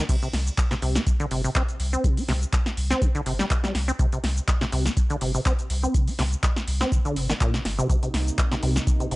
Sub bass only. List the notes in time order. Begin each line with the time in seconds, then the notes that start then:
0.33 C2
0.82 C2
1.31 G1
1.80 C2
2.29 C2
2.77 C2
3.26 G1
3.75 C2
4.24 C2
4.72 C2
5.21 G1
5.70 C2
6.19 C2
6.68 C2
7.16 G1
7.65 G1
8.14 C2
8.63 C2
9.11 G1